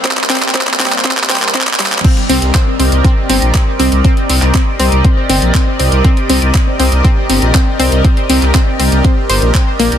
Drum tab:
CC |--------------------------------|x-------------------------------|--------------------------------|--------------------------------|
HH |x-x-o-x-x---o-x-x-x-o-x-x-x-o-x-|x-x-o-x-x---o-x-x---o-x-x---o-x-|x-x-o-x-x---o-x-x---o-x-x---o-x-|x-x-o-x-x---o-x-x---o-x-x---o-x-|
CP |xxxxxxxxxxxxxxxxxxxxxxxxxxxxxxxx|--------x---------------x-------|------x-x---------------x-------|--------x---------------x-------|
BD |o-------o-------o-------o-------|o-------o-------o-------o-------|o-------o-------o-------o-------|o-------o-------o-------o-------|

CC |--------------------------------|
HH |x-x-o-x-x---o-x-x---o-x-x---o-x-|
CP |------x-x---------------x-------|
BD |o-------o-------o-------o-------|